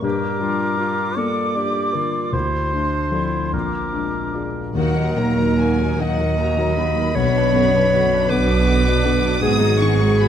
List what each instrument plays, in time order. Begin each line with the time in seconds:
Already playing: harp F3 A#3 F4
0.02 grand piano G2, harp G2, clarinet G4, oboe A#4, flute section D6
0.40 harp G3, grand piano D4, clarinet F4
0.78 grand piano F4, clarinet F4, harp G4
1.16 grand piano A#3, clarinet A4, harp D5, oboe D5
1.55 harp D4, clarinet G4, grand piano D5
1.92 harp D3, clarinet F4, grand piano A#4
2.32 grand piano D2, harp D3, clarinet E4, oboe C5, flute section C6
2.72 harp A3, grand piano D4, clarinet D4
3.12 grand piano F3 A4, harp C4 D5, clarinet E4
3.52 grand piano A#1, harp A#2, clarinet F4, oboe A#4, flute section D6
3.93 harp G#3, grand piano D4
4.33 grand piano F4 G#4, harp F4 D5
4.74 grand piano D#2, cello section D#2, double bass section D#2, harp D#3, viola section D#3 F#3, violin section A#3 F#4 F#5, clarinet A#4
4.97 viola section D#3 F#3, violin section D#4 A#4
5.15 grand piano A#2, viola section D#3 F#3, harp F#3, violin section A#3 F#4 A#5
5.36 viola section D#3 F#3, violin section D#4 A#4
5.57 viola section D#3 F#3, violin section A#3 F#4 G#5, grand piano F#4, harp F#4
5.79 viola section D#3 F#3, violin section D#4 A#4
5.99 double bass section D#2, cello section D#2, viola section D#3 F#3, violin section A#3 F#4 F#5, grand piano D#4, harp D#5, clarinet D#5
6.19 viola section D#3 F#3, violin section D#4 A#4
6.38 viola section D#3 F#3, violin section A#3 F#4 A#5, grand piano F#4, harp F#4
6.58 viola section D#3 F#3, violin section D#4 A#4
6.77 viola section D#3 F#3, violin section A#3 F#4 B5, harp D#4, grand piano D#4
6.97 viola section D#3 F#3, violin section D#4 A#4
7.15 double bass section B1, grand piano B1, harp B2, cello section B2, viola section D3 B3, violin section B3 F#4, clarinet C#5
7.35 viola section F#3 D4, violin section D4 B4
7.53 grand piano F#2, viola section D3 B3, harp F#3, violin section B3 F#4
7.73 viola section F#3 D4, violin section D4 B4
7.91 viola section D3 B3, violin section B3 F#4, harp F#4, grand piano F#4
8.10 viola section F#3 D4, violin section D4 B4
8.28 double bass section B1, cello section B2, viola section D3 B3, violin section B3 F#4 D6, grand piano D4, clarinet B4, harp D5
8.48 viola section F#3 D4, violin section D4 B4
8.66 viola section D3 B3, violin section B3 F#4, harp F#4, grand piano F#4
8.86 viola section F#3 D4, violin section D4 B4
9.04 viola section D3 B3, harp B3, violin section B3 F#4, grand piano D4
9.23 viola section F#3 D4, violin section D4 B4
9.40 double bass section G#1, harp G#2, cello section G#2, grand piano G#2, viola section G#3 B3, violin section F#4 G#4 D#6, clarinet G#4
9.61 viola section F#3 G#3, violin section D#4 F#4
9.80 grand piano D#3, harp G#3, viola section G#3 B3, violin section F#4 G#4 C#6
9.99 viola section F#3 G#3, violin section D#4 F#4
10.19 viola section G#3 B3, harp F#4, violin section F#4 G#4 B5, grand piano F#4